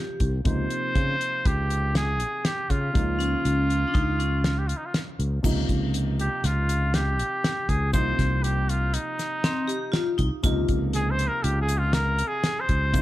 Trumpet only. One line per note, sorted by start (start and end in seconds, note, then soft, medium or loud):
0.47 1.48 C5 loud
1.47 1.96 G4 medium
1.97 2.47 G#4 medium
2.45 2.72 G4 medium
2.70 4.60 F4 medium
4.58 4.69 G4 medium
4.68 4.79 F4 medium
4.77 4.87 D#4 medium
4.86 4.94 F4 medium
6.20 6.47 G4 medium
6.45 6.96 F4 medium
6.94 7.70 G4 medium
7.69 7.93 G#4 medium
7.93 8.44 C5 loud
8.43 8.71 G4 medium
8.69 8.95 F4 medium
8.94 10.19 D#4 medium
10.95 11.12 G#4 medium
11.11 11.29 C5 medium
11.27 11.45 A#4 medium
11.43 11.60 G4 medium
11.61 11.79 G#4 medium
11.78 11.95 F4 medium
11.94 12.29 A#4 loud
12.27 12.62 G#4 medium
12.60 13.02 C5 loud